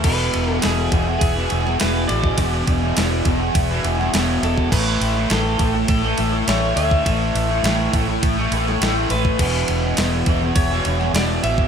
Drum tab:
CC |x---------------|----------------|x---------------|----------------|
RD |--x-x-x-x-x-x-x-|x-x-x-x-x-x-x-x-|--x-x-x-x-x-x-x-|x-x-x-x-x-x-x-x-|
SD |----o------oo---|----o------oo---|----o-------o---|----o------oo---|
BD |o-----o-o------o|o-o---o-o------o|o-----o-o------o|o-----o-o------o|

CC |x---------------|
RD |--x-x-x-x-x-x-x-|
SD |----o------oo---|
BD |o-----o-o------o|